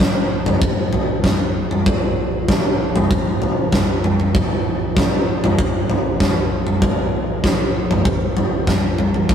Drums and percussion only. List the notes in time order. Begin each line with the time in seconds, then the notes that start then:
0.00 kick, snare, floor tom
0.46 floor tom, mid tom
0.62 kick
0.93 floor tom
1.24 kick, snare, floor tom, mid tom
1.71 mid tom
1.86 kick, floor tom
2.48 kick, snare, floor tom
2.96 floor tom, mid tom
3.11 kick
3.42 floor tom
3.72 kick, snare, floor tom, mid tom
4.04 mid tom
4.20 mid tom
4.35 kick, floor tom
4.97 kick, snare, floor tom
5.44 floor tom, mid tom
5.59 kick
5.90 floor tom
6.20 kick, snare, floor tom, mid tom
6.67 mid tom
6.82 kick, floor tom
7.44 kick, snare, floor tom
7.91 floor tom, mid tom
8.05 kick
8.37 floor tom
8.67 kick, snare, floor tom, mid tom
8.98 mid tom
9.14 mid tom
9.29 kick, floor tom